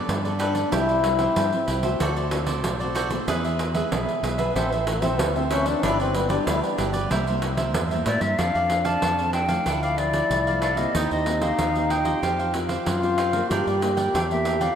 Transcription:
Already playing: B3 D4 A4 B4 D5
0.09 G2 D3, pandeiro
0.25 B3 D4 A4 B4 D5, pandeiro
0.39 D4 G4 A4 B4 D5, pandeiro
0.55 A4 B4 D5, pandeiro
0.72 C2 C3 G3 C4 E4 G4 C5 E5, pandeiro
0.89 G4 C5 E5, pandeiro
1.03 G3 C4 E4, muted cavaquinho stroke, pandeiro
1.19 G4 C5 E5, pandeiro
1.36 G2 E4 G4 C5 E5, pandeiro
1.53 G3 C4 E4, pandeiro
1.67 C2 E4 G4 C5 E5, pandeiro
1.83 A3 C4 F#4 G4 C5 E5, pandeiro
2.00 D2 D3 F#4 A4 C5 D5, pandeiro
2.16 A4 C5 D5, pandeiro
2.31 A3 C4 F#4, muted cavaquinho stroke, pandeiro
2.46 A4 C5 D5, pandeiro
2.64 B1 A2, pandeiro
2.80 A3 C4 F#4 A4 C5 D5, pandeiro
2.95 F#4 A4 C5 D5, pandeiro
3.10 G#3 B3 E4 A4 C5 D5, pandeiro
3.28 E2 E3 E4 G#4 B4 E5, pandeiro
3.44 G#4 B4 E5, pandeiro
3.59 muted cavaquinho stroke, pandeiro
3.74 G#3 B3 E4 G#4 B4 E5, pandeiro
3.92 B1 B2 E4 G#4 B4 E5, pandeiro
4.09 pandeiro
4.23 B1 G#3 B3 E4 G#4 B4 E5, pandeiro
4.38 B3 G#4 B4 E5, pandeiro
4.55 A1 A2 E3 C4 E4 A4 C5 E5, pandeiro
4.72 E3 A4 C5 E5, pandeiro
4.87 A3, muted cavaquinho stroke, pandeiro
5.02 E3 C4 E4 A4 C5 E5, pandeiro
5.19 D2 E3 B3, pandeiro
5.36 E3 C4 E4 A4 C5 E5, pandeiro
5.51 C#4 E4 A4 C5 E5, pandeiro
5.66 D4 A4 C5 E5, pandeiro
5.83 G1 G2 G3 B3 D4 E4 G4 B4 D5, pandeiro
6.00 C4 G4 B4 D5, pandeiro
6.14 G3 B3 D4, muted cavaquinho stroke, pandeiro
6.29 G3 B3 D4 G4 B4 D5, pandeiro
6.47 D2 D3 D4 E4 G4 B4 D5, pandeiro
6.63 B3, pandeiro
6.78 G1 G3 B3 D4 G4 B4 D5, pandeiro
6.93 G4 B4 D5, pandeiro
7.11 C2 C3 G3 A#3 E4 A#4 C5 E5, pandeiro
7.27 G3 A#3 E4 A#4 C5 E5, pandeiro
7.42 G3 A#3 E4, muted cavaquinho stroke, pandeiro
7.57 A#4 C5 E5, pandeiro
7.74 E2 G2, pandeiro
7.91 G3 A#3 E4 A#4 C5 E5, pandeiro
8.06 A2 E4 A#4 C5 D5 E5, pandeiro
8.21 G2 A#4 C5 E5, pandeiro
8.38 F2 F3 C4 D4 A4 D5 F5, pandeiro
8.55 F2 A4 D5 F5, pandeiro
8.70 C4 D4 A4, muted cavaquinho stroke, pandeiro
8.84 A4 D5 F5 A5, pandeiro
9.02 F2 D4 A4 D5 F5, pandeiro
9.19 C4 D4 A4, pandeiro
9.33 D4 A4 D5 F5 G5, pandeiro
9.48 F3 A3 D4 A4 D5 F5, pandeiro
9.60 D#4
9.66 D2 D3 D4 E4 A4 D5 F5, pandeiro
9.83 A4 D5 F5, pandeiro
9.98 F3 A3 D4 D5, muted cavaquinho stroke, pandeiro
10.13 A4 D5, pandeiro
10.30 C2 A2, pandeiro
10.47 F3 A3 D4 A4 D5 F5, pandeiro
10.62 D4 A4 D5 F5, pandeiro
10.77 A#3 C4 G4 A4 D5 D#5 F5, pandeiro
10.95 D#2 D#3 D#4 G4 C5 D#5, pandeiro
11.11 D#2 G4 C5 D#5, pandeiro
11.26 A#3 C4 G4, muted cavaquinho stroke, pandeiro
11.41 G4 C5 D#5 F5, pandeiro
11.59 D#2 A#2 D#4 G4 C5 D#5, pandeiro
11.75 A#3 C4 G4, pandeiro
11.90 D#4 G4 C5 D#5 G5, pandeiro
12.05 C4 F4 G4 C5 D#5, pandeiro
12.23 F2 F3 C4 F4 G4 C5 F5, pandeiro
12.39 G4 C5 F5, pandeiro
12.54 C4 F4 G4, muted cavaquinho stroke, pandeiro
12.69 G4 C5 F5, pandeiro
12.86 F#2 C3 F4, pandeiro
13.03 C4 F4 G4 C5 F5, pandeiro
13.18 F4 G4 C5 F5, pandeiro
13.33 A#3 D4 G4 A#4 C5 F5, pandeiro
13.50 G2 G3 D4 G4 A#4 D5 G5, pandeiro
13.67 G2 A#4 D5 G5, pandeiro
13.81 A#3 D4 A#4, muted cavaquinho stroke, pandeiro
13.97 A#4 D5 G5, pandeiro
14.14 E2 D4 A#4 D5 G5, pandeiro
14.31 A#3 D4 A#4 E5, pandeiro
14.45 D4 A#4 D5 G5, pandeiro
14.61 C4 F4 A4 A#4 D5 F5 G5, pandeiro

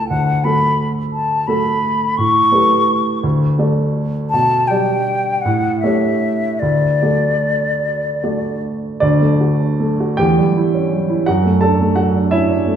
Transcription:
Already playing: C#2 A3 E4 A4
0.09 D2 F#5
0.44 A3 F#4 A4 B5
1.13 A5
1.47 A3 F#4 A4 B5
2.17 A2 C#6
2.52 A3 G4 B4
3.23 D2
3.58 A3 F#4 D5
4.30 B2 A5
4.68 G3 G4 D5 G5
5.42 A2 F#5
5.80 A3 E5
5.84 G4 C#5
6.59 D2 D5
7.02 A3 F#4 D5
8.23 A3 F#4 D5
9.00 D2 D4 D5
9.21 A3
9.41 F#4
9.60 D4
9.80 A3
10.00 F#4
10.17 E2 G4 G5
10.38 G3
10.57 E4
10.75 C#4
10.94 G3
11.10 E4
11.26 F#2 F#4 F#5
11.45 A3
11.61 D4 A4 A5
11.81 A3
11.96 F#3 F#4 F#5
12.15 D4
12.31 C#4 E4 E5
12.50 D4
12.67 A3

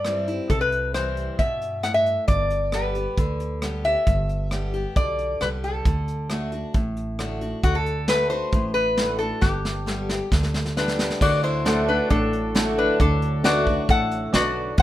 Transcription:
Already playing: G2 D5
0.05 E3 G3 C4 E4, cross-stick, closed hi-hat
0.27 C4 E4, closed hi-hat
0.50 C2 C3 A4, kick, closed hi-hat
0.61 B4
0.72 closed hi-hat
0.94 E3 G3 C4 E4 C5, cross-stick, closed hi-hat
1.17 closed hi-hat
1.39 G2 B2 E5, kick, closed hi-hat
1.62 closed hi-hat
1.83 A2 F#5, cross-stick, closed hi-hat
1.94 E5
2.06 closed hi-hat
2.28 G1 G2 D5, kick, closed hi-hat
2.50 closed hi-hat
2.72 D3 G3 B3 G4 B4, cross-stick, closed hi-hat
2.95 B3 G4, closed hi-hat
3.17 D2 D3, kick, closed hi-hat
3.40 closed hi-hat
3.62 D3 G3 B3 G4, cross-stick, closed hi-hat
3.84 B3 G4 E5, closed hi-hat
4.07 G1 G2, kick, closed hi-hat
4.29 closed hi-hat
4.51 D3 G3 B3 G4, cross-stick, closed hi-hat
4.73 B3 G4, closed hi-hat
4.96 B1 D3 D5, kick, closed hi-hat
5.19 closed hi-hat
5.41 C2 D3 G3 B3 G4 B4, cross-stick, closed hi-hat
5.64 A4, closed hi-hat
5.85 D2 D3, kick, closed hi-hat
6.08 closed hi-hat
6.30 D3 A3 D4 F#4, cross-stick, closed hi-hat
6.52 D4 F#4, closed hi-hat
6.74 A1 A2, kick, closed hi-hat
6.97 closed hi-hat
7.19 D3 A3 D4 F#4, cross-stick, closed hi-hat
7.41 D4 F#4, closed hi-hat
7.63 D2 D3 F#4, kick, closed hi-hat
7.75 A4
7.86 closed hi-hat
8.08 D3 A3 D4 F#4 B4, snare, closed hi-hat
8.30 D4 F#4 C5, closed hi-hat
8.52 A1 A2, kick, closed hi-hat
8.74 B4, closed hi-hat
8.97 D3 A3 D4 F#4, snare, closed hi-hat
9.19 F#4 A4, closed hi-hat
9.23 D4
9.41 G1 G2 G4, kick, snare
9.65 snare
9.86 D3 G3 B3 G4, snare
10.09 B3 G4, snare
10.32 D2 D3, kick, snare
10.43 snare
10.54 snare
10.66 snare
10.76 D3 G3 B3 D4 G4 B4, snare
10.88 snare
10.99 snare
11.10 snare
11.21 D2 A2 D3 F#3 D4 F#4 D5, kick, crash
11.43 E4 C5, closed hi-hat
11.65 D3 A3 D4 F#4 A4 D5 F#5, snare, closed hi-hat
11.88 D4 F#4 B4
12.10 A1 A2 D4 A4, kick, closed hi-hat
12.33 closed hi-hat
12.55 D3 A3 D4 F#4 A4, snare, closed hi-hat
12.78 D4 B4
13.00 D2 D3 D4 A4, kick, closed hi-hat
13.22 closed hi-hat
13.44 D3 A3 D4 F#4 B4 D5, snare, closed hi-hat
13.67 D4 F#4, kick
13.89 A1 A2 A4 F#5, kick, closed hi-hat
14.11 closed hi-hat
14.33 B1 D3 D4 F#4 B4 D5, snare, closed hi-hat
14.78 C2 C3 E3 G3 E4 G4, kick, closed hi-hat

